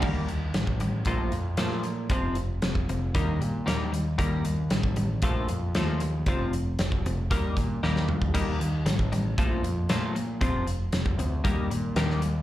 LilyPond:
<<
  \new Staff \with { instrumentName = "Clean electric guitar" } { \clef bass \time 4/4 \key ees \lydian \tempo 4 = 116 <ees g bes>8 <ees g>8 <ees g>8 <ees g>8 <bes, f a>8 <bes, f>8 <bes, f a>8 <bes, f>8 | <f, c f>8 <f, c>8 <f, c>8 <f, c>8 <ees g bes>8 <ees g>8 <ees g bes>8 <ees g>8 | <ees g bes>8 <ees g>8 <ees g>8 <ees g>8 <bes, f a>8 <bes, f>8 <bes, f a>8 <bes, f>8 | <f, c f>8 <f, c>8 <f, c>8 <f, c>8 <ees g bes>8 <ees g>8 <ees g bes>8 <ees g>8 |
<ees g bes>8 ees8 <ees g>8 <ees g>8 <bes, f a>8 <bes, f>8 <bes, f a>8 <bes, f>8 | <f, c f>8 <f, c>8 <f, c>8 <f, c>8 <ees g bes>8 <ees g>8 <ees g bes>8 <ees g>8 | }
  \new Staff \with { instrumentName = "Picked electric bass" } { \clef bass \time 4/4 \key ees \lydian ees,8 ees,8 a,,4 bes,,8 f,8 bes,4 | f,,4 f,,8 f,,8 ees,8 bes,8 ees,4 | ees,8 ees,8 a,,4 bes,,8 f,8 ees,4 | f,,4 f,,8 f,,8 ees,8 bes,8 ees,4 |
ees,8 ees,8 a,,4 bes,,8 f,8 bes,4 | f,,4 f,,8 d,8 ees,8 bes,8 ees,4 | }
  \new DrumStaff \with { instrumentName = "Drums" } \drummode { \time 4/4 <cymc bd>8 hh8 <hh sn>16 bd16 hh8 <hh bd>8 hh8 <hh sn>16 sn16 hh8 | <hh bd>8 hh8 <hh sn>16 bd16 hh8 <hh bd>8 hh8 <hh sn>8 hh8 | <hh bd>8 hh8 <hh sn>16 bd16 hh8 <hh bd>8 hh8 <hh sn>8 hh8 | <hh bd>8 hh8 <hh sn>16 bd16 hh8 <hh bd>8 <hh bd>8 sn16 sn16 toml16 bd16 |
<cymc hh bd>8 hh8 <hh sn>16 bd16 hh8 <hh bd>8 hh8 <hh sn>8 hh8 | <hh bd>8 hh8 <hh sn>16 bd16 hh8 <hh bd>8 hh8 <hh sn>16 sn16 hh8 | }
>>